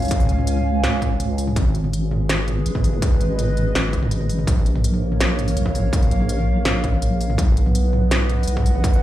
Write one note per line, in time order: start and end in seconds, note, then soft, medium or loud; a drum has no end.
0.00 2.73 C#4 medium
0.00 2.39 C#5 medium
0.00 2.26 F5 medium
0.00 2.24 G#5 medium
0.00 open hi-hat soft
0.05 open hi-hat soft
0.08 kick loud
0.08 closed hi-hat medium
0.08 open hi-hat medium
0.20 mid tom medium
0.20 open hi-hat soft
0.26 0.82 C#2 loud
0.26 closed hi-hat soft
0.26 mid tom medium
0.32 mid tom soft
0.38 mid tom medium
0.47 closed hi-hat medium
0.57 mid tom soft
0.83 1.55 C#2 loud
0.83 snare loud
0.83 mid tom medium
0.83 open hi-hat medium
1.02 kick medium
1.02 closed hi-hat soft
1.02 mid tom medium
1.20 closed hi-hat medium
1.20 mid tom medium
1.38 open hi-hat medium
1.47 mid tom medium
1.56 2.64 G#1 loud
1.56 4.47 G#3 medium
1.56 kick loud
1.56 closed hi-hat medium
1.66 5.64 G#4 medium
1.66 mid tom medium
1.75 closed hi-hat soft
1.84 mid tom medium
1.93 closed hi-hat medium
2.01 4.48 B4 medium
2.11 mid tom medium
2.29 snare loud
2.29 closed hi-hat medium
2.29 mid tom medium
2.48 closed hi-hat soft
2.48 mid tom medium
2.66 3.01 G#1 medium
2.66 closed hi-hat medium
2.75 kick medium
2.75 mid tom medium
2.84 5.64 D#5 medium
2.84 open hi-hat medium
2.93 mid tom medium
3.02 kick loud
3.02 closed hi-hat medium
3.12 mid tom medium
3.20 3.73 G#1 loud
3.20 closed hi-hat soft
3.39 closed hi-hat medium
3.39 mid tom medium
3.57 closed hi-hat soft
3.57 mid tom medium
3.75 4.46 G#1 medium
3.75 snare loud
3.75 mid tom medium
3.75 open hi-hat medium
3.93 kick medium
3.93 closed hi-hat soft
4.03 mid tom medium
4.11 closed hi-hat medium
4.21 mid tom medium
4.29 open hi-hat medium
4.39 mid tom medium
4.47 5.55 A#1 loud
4.47 7.38 A#3 medium
4.47 kick loud
4.47 closed hi-hat medium
4.47 mid tom medium
4.54 7.39 A#4 medium
4.66 closed hi-hat soft
4.70 8.54 C#5 medium
4.75 mid tom medium
4.84 closed hi-hat medium
4.94 mid tom medium
5.12 mid tom medium
5.21 snare loud
5.21 closed hi-hat medium
5.27 7.38 F5 medium
5.39 closed hi-hat soft
5.39 mid tom medium
5.48 open hi-hat medium
5.56 5.91 A#1 medium
5.56 closed hi-hat medium
5.56 mid tom medium
5.66 kick medium
5.75 mid tom medium
5.75 open hi-hat medium
5.93 kick loud
5.93 closed hi-hat medium
6.02 mid tom medium
6.02 open hi-hat soft
6.11 6.64 A#1 loud
6.11 closed hi-hat soft
6.21 mid tom medium
6.29 closed hi-hat medium
6.38 mid tom medium
6.65 7.37 A#1 loud
6.65 snare loud
6.65 mid tom medium
6.65 open hi-hat medium
6.84 kick medium
6.84 closed hi-hat soft
6.84 mid tom medium
7.02 closed hi-hat medium
7.02 mid tom soft
7.21 open hi-hat medium
7.30 mid tom medium
7.38 8.46 B1 loud
7.38 9.03 B3 medium
7.38 kick loud
7.38 closed hi-hat medium
7.43 9.03 B4 medium
7.48 mid tom soft
7.57 closed hi-hat soft
7.61 9.03 D#5 medium
7.66 mid tom medium
7.75 closed hi-hat medium
7.93 mid tom medium
8.11 snare loud
8.11 closed hi-hat medium
8.11 mid tom medium
8.18 9.03 F#5 loud
8.29 closed hi-hat soft
8.29 mid tom soft
8.43 open hi-hat medium
8.47 8.82 B1 medium
8.47 closed hi-hat medium
8.57 kick medium
8.57 mid tom medium
8.66 open hi-hat medium
8.75 mid tom soft
8.84 kick loud
8.84 closed hi-hat medium
8.93 mid tom medium
8.93 open hi-hat soft